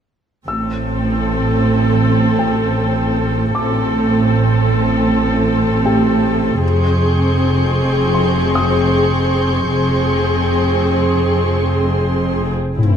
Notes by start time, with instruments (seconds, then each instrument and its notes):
0.46 double bass section A1, cello section A2, viola section C4 A4, grand piano E6
2.39 grand piano G5
3.55 double bass section A1, cello section A2, viola section C4 A4, grand piano D6
5.85 grand piano G4 G5
6.62 double bass section F1, cello section F2, viola section C4 G#4, violin section C6 C#6 G6
8.14 grand piano C6
8.55 grand piano D#6
9.69 double bass section F1, cello section F2, viola section C4 G#4
12.78 double bass section A1, cello section A2, viola section C4 E4, sub drop